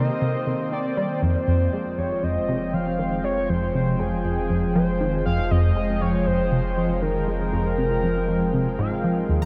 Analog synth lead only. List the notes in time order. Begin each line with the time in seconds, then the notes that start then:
Already playing: D#5
0.73 D5
1.23 C5
1.48 C5
1.98 C#5
2.23 D#5
2.74 F5
3.24 C#5
3.49 C5
3.99 G#4
4.75 C5
5.26 F5
5.51 D#5
6.01 C#5
6.26 C5
7.02 A#4
8.79 F5